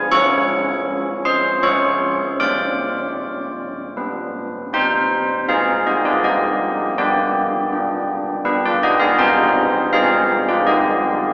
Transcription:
0.11 F3 C#4 G#4 C#5 C#6
1.25 C5 C6
1.62 F3 C#4 G#4 C#5 C#6
2.40 G3 C4 C5 D5 D6
3.97 G3 D4 B4
4.73 C4 C5 G5
5.48 D#4 G#4 F5
5.87 G4 D#5
6.05 F4 D5
6.24 D#4 G4 D#5
6.98 B3 G4 D5
7.72 D4
8.45 D4 G4 B4
8.66 F4 D5
8.83 G4 D#5
9.00 G#4 F5
9.19 C4 C5 G5
9.93 D#4 G4 G#4 F5
10.49 F4 D5
10.67 D#3 C4 G4 D#5

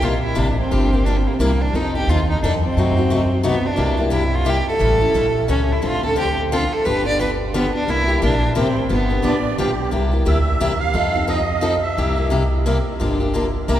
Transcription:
0.01 A#1 C3 G3 A#3 E4 F4 G4
0.23 E4
0.35 A1 C3 G3 A#3 D4 E4 G4
0.60 C4
0.71 G1 D3 F3 A#3 D4 G4
0.92 A#3 D4 G4
1.05 D3 F3 A#3 D4 G4
1.16 C4
1.27 A#3
1.34 C4
1.39 C2 C3 G3 A#3 E4 G4
1.61 D4
1.73 F2 F3 C4 D#4 A4
1.95 C4 D#4 G4 A4
2.07 D#2 F3 C4 D#4 F4 A4
2.29 D#4
2.43 F2 F3 C4 D4 D#4 A4
2.64 C4
2.77 F#2 C3 F#3 A3 D#4 F#4
2.97 A3 D#4 F#4
3.10 C3 F#3 A3 D#4 F#4
3.43 C3 F#3 A3 B3 D#4 F#4
3.66 D4
3.76 C2 C3 G3 A#3 E4 G4
3.97 A#3 E4 G4
4.10 C3 G3 A#3 E4 G4
4.35 F4
4.45 C3 G3 A#3 E4 G4
4.50 G4
4.69 A4
4.79 A1 E3 G3 C#4 E4 A4
5.01 C#4 E4 A4
5.14 A#1 E3 G3 C#4 E4 A4
5.48 C#2 E3 G3 C#4 E4 A4
5.72 E4
5.82 D2 D3 F3 C4 D4 A4
5.86 F4
6.03 C4 D4 A4
6.16 D3 F3 C4 D4 G4 A4
6.52 D3 F3 C4 D4 F4 A4
6.73 A4
6.85 G1 D3 F3 B3 D4 G4 B4
7.05 B3 D4 G4 D5
7.19 D3 F3 B3 D4 G4 B4
7.54 D3 F3 B3 D4 G4
7.75 D4
7.88 C2 C3 G3 A#3 E4 G4
8.08 A#3 E4 G4
8.22 A#1 C3 G3 A#3 D4 E4 G4
8.55 A1 C3 G3 A#3 C4 E4 G4
8.89 G1 D3 F3 B3 D4 G4
9.09 B3 D4 G4
9.22 A1 D3 F3 B3 D4 G4 D5
9.58 B1 D3 F3 B3 D4 G4
9.91 C2 C3 G3 A#3 E4 G4
10.12 A#3 E4 G4
10.25 D2 C3 G3 A#3 E4 G4 E5
10.60 E2 C3 G3 A#3 E4 G4
10.80 F5
10.94 F2 F3 C4 D#4 A4
11.14 C4 D#4 A4
11.27 F3 C4 D#4 A4 D#5
11.61 F3 C4 D#4 A4
11.83 E5
11.97 C2 C3 G3 A#3 E4 G4
12.16 A#3 E4 G4
12.30 C3 G3 A#3 E4 G4
12.66 C3 G3 A#3 E4 G4
13.00 G1 D3 F3 A#3 D4 G4
13.20 A#3 D4 G4
13.34 D3 F3 A#3 D4 G4
13.68 C2 C3 G3 A#3 E4 G4 A#5

